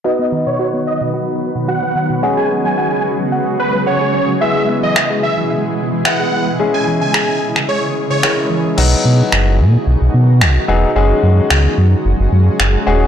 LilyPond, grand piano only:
\new Staff \with { instrumentName = "Grand piano" } { \time 4/4 \key b \major \tempo 4 = 110 <b dis' fis' b'>1 | <gis cis' fis' gis'>1 | <gis b e' gis'>2. <gis b e' gis'>4 | <gis cis' e' gis'>2. <gis cis' e' ais'>4 |
<fis b dis' fis'>4. r2 <fis b dis' gis'>8 | <gis cis' fis' gis'>4. r2 <gis cis' fis' gis'>8 | }